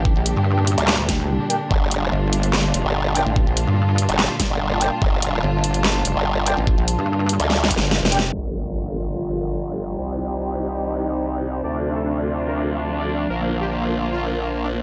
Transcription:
Already playing: A1 A#2 D3 G3 D4 G4 G5
0.05 kick
0.16 A#1
0.26 closed hi-hat
0.36 G2
0.67 closed hi-hat
0.78 D2, closed hi-hat
0.88 snare, clap
0.99 D2
1.09 kick, snare, closed hi-hat
1.50 D4 A#4 G5, closed hi-hat
1.71 G1 F4, kick
1.91 closed hi-hat
2.12 G1
2.33 closed hi-hat
2.43 closed hi-hat
2.53 snare, clap
2.67 A5
2.74 F1, closed hi-hat
2.85 G1
3.15 D4 A#4 G5, closed hi-hat
3.26 A1
3.36 kick
3.47 A#1
3.57 closed hi-hat
3.67 G2
3.98 closed hi-hat
4.09 G1, closed hi-hat
4.19 snare, clap
4.40 kick, snare, closed hi-hat
4.50 G1
4.81 D4 A#4 G5, closed hi-hat
5.02 G1, kick
5.22 closed hi-hat
5.43 G1
5.64 closed hi-hat
5.74 closed hi-hat
5.84 snare, clap
6.05 F1, closed hi-hat
6.16 G1
6.46 D4 A#4 G5, closed hi-hat
6.57 A1
6.67 kick
6.78 A#1
6.88 closed hi-hat
6.98 G2
7.29 closed hi-hat
7.40 D2, closed hi-hat
7.50 snare
7.64 snare
7.71 kick, closed hi-hat
7.78 G1, snare
7.91 snare
8.02 F1, snare
8.12 D4 A#4 G5, closed hi-hat
8.19 snare
8.33 G1 D3 F3 G3 A#3 F4, crash, impact
9.07 G5
9.98 C2 C3 D#3 D#4 G4
10.23 C5
11.64 D2 F3 A3 D4 F4 D5
11.74 D4
11.85 D4
11.95 A4
12.05 D4
12.16 D4
12.21 F5
12.36 D4
12.47 A#4
12.57 D4
12.78 D4
12.88 D4
12.99 D5
13.09 D4
13.19 D4
13.29 A#1 A#2 D3 F4 A#4
13.40 A#3
13.47 A#3 A#4
13.61 G4
13.71 A#3
13.81 A#3
14.02 A#3
14.12 F4
14.23 A#3
14.43 A#3
14.53 A#3
14.64 D4
14.74 A#3

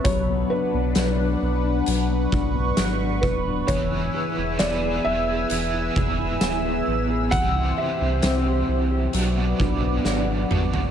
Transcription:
Already playing: B3 C#4 B4
0.04 B1 F#3 D4 C#5 F#5, kick, closed hi-hat
0.28 B3
0.50 D4 B4
0.74 B1 B3
0.95 B1 F#3, snare, closed hi-hat, tambourine
1.19 D4
1.42 B1 B3
1.64 D4
1.86 B1 F#3 C#6, closed hi-hat
2.10 B3
2.32 B1 D4, kick
2.55 B3
2.77 G#1 F#3, snare, closed hi-hat, tambourine
3.01 D4
3.22 D1 B3 B4, kick
3.46 D4
3.67 E1 E3 B3 E4 C#5 E5 G#5 E6, kick, closed hi-hat
3.71 G#4
3.91 E4
4.14 G#4
4.38 E1 E4
4.57 E1 E3 B3 D5, snare, closed hi-hat, tambourine
4.61 E4 G#4
4.83 G#4
5.04 E1 E4 E5
5.29 G#4
5.47 E1 E3 B3, closed hi-hat
5.53 E4 G#4
5.74 E4
5.96 E1 G#4, kick
6.19 E4
6.41 D1 B3, snare, closed hi-hat, tambourine
6.65 G#4
6.87 A1 E4
7.10 G#4
7.30 C2 C3 E3 G4 C5 F#5, kick, closed hi-hat
7.34 C4 E4
7.38 G4
7.55 E4
7.78 G4 E5
8.01 C2 E4
8.22 C2 C4, snare, closed hi-hat, tambourine
8.46 G4
8.68 C2 E4
8.91 G4
9.13 B1 B2 F#3 B3 D4 B4 D5 F#5 D6, closed hi-hat
9.17 F#4
9.37 B3
9.59 B1 D4, kick
9.82 B3
10.04 G#1 F#3, snare
10.28 D4
10.49 G#1 B3 D4 F#4, mid tom
10.55 B3
10.73 D4, floor tom

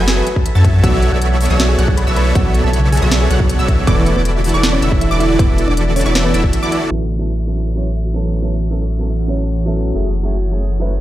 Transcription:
Already playing: E3 A3 F#4 A4 B4 C#5 B5
0.00 F#1 F#3 F#4 A4 E5 G#5 G#6
0.08 G#4, snare, closed hi-hat
0.17 A4 B4 B5
0.27 closed hi-hat
0.36 A4, kick
0.46 E5, closed hi-hat
0.55 F#2 F#3 F#4 A4 C#5 E5 A5 A6
0.65 E5, kick, closed hi-hat
0.74 A4
0.83 B1 C#3 D3 B3 E4 F#4 A4 C#5 D5 E5 F#5 E6, kick, closed hi-hat
0.93 C#5
1.03 F#4, closed hi-hat
1.12 B1 B3 F#4 A4 C#5 D5 E5 F#5 E6
1.21 A4, closed hi-hat
1.31 B4
1.41 open hi-hat
1.45 closed hi-hat
1.50 B1 B3 F#4 A4 C#5 D5 E5 E6
1.59 F#4, snare, closed hi-hat
1.69 G#4 G#5
1.78 B1 B3 F#4 A4 C#5 D5 F#5 F#6, closed hi-hat
1.88 B4, kick
1.97 B4 B5, closed hi-hat
2.07 B1 B3 F#4 A4 C#5 D5 E5 E6
2.16 F#4 B4 B5, closed hi-hat
2.35 B1 B3 F#4 A4 C#5 D5 F#5 E6, kick, closed hi-hat
2.45 B4
2.54 closed hi-hat
2.64 B1 B3 F#4 A4 C#5 D5 E5 A5 E6
2.73 F#4, closed hi-hat
2.92 G#4 A4 G#5, open hi-hat
2.97 closed hi-hat
3.02 B1 B3 F#4 A4 B4 C#5 D5 E5 E6
3.12 snare, closed hi-hat
3.21 G#4 C#5 G#5
3.30 B1 B3 F#4 A4 C#5 D5 F#5 F#6, closed hi-hat
3.40 kick
3.49 A4, closed hi-hat
3.59 B1 B3 F#4 A4 B4 C#5 D5 E5 E6
3.68 kick, closed hi-hat
3.78 C#5
3.87 E1 E3 A3 B3 E4 F#4 A4 B4 D5 D6, kick, closed hi-hat
4.06 B4, closed hi-hat
4.16 E1 E3 B3 E4 F#4 A4 B4 D5 D6
4.25 closed hi-hat
4.35 E5
4.44 A4, open hi-hat
4.49 closed hi-hat
4.54 E1 E3 E4 F#4 A4 D5 D6
4.63 B4, snare, closed hi-hat
4.73 C#4 C#5 D5
4.82 E1 E3 E4 F#4 A4 E5 E6, closed hi-hat
4.92 E5, kick
5.01 E4 A4 E5, closed hi-hat
5.11 E1 E3 E4 F#4 A4 D5 D6
5.20 E4 B4 E5, closed hi-hat
5.30 D5
5.39 E1 E3 B3 E4 F#4 A4 B4 D6, kick, closed hi-hat
5.49 E5
5.58 A4, closed hi-hat
5.68 E1 E3 D4 E4 F#4 A4 D5 D6
5.77 B4, closed hi-hat
5.87 D5
5.96 C#4 C#5, open hi-hat
6.01 closed hi-hat
6.06 E1 E3 E4 F#4 A4 D5 E5 D6
6.15 A4, snare, closed hi-hat
6.25 B3 B4
6.34 E1 E3 E4 F#4 A4 D5 E5 E6, closed hi-hat
6.44 D5, kick
6.53 closed hi-hat
6.63 E3 E4 F#4 A4 D5 E5 D6
6.72 E5, closed hi-hat
6.90 A1 E3 F#3 A3 B3 C#4 E4 F#4 A4
7.10 A4
7.19 F#3 B3 C#4 E4 A4 C#5
7.39 E5
7.47 F#3 B3 C#4 E4 F#4 A4
7.67 A4
7.76 F#3 B3 C#4 E4 C#5
7.96 E5
8.05 F#4
8.14 F#3 B3 C#4 E4 A4
8.24 A4
8.34 C#5
8.42 F#3 B3 C#4 E4 A4
8.53 E5
8.62 F#4
8.71 F#3 B3 C#4 E4 A4
8.81 A4
8.91 C#5
8.99 F#3 B3 C#4 E4 A4
9.10 E5
9.19 F#4
9.28 F#3 B3 C#4 E4 C#5
9.38 A4
9.48 C#5
9.66 F#3 B3 C#4 E4 A4 E5
9.76 F#4
9.94 F#1 F#3 A3 C#4 E4 G#4
10.05 A4
10.23 F#3 A3 C#4 E4 G#4 C#5
10.33 F#4
10.51 F#3 A3 C#4 E4 G#4
10.62 A4
10.80 F#3 A3 C#4 E4 B4 C#5
10.90 F#4

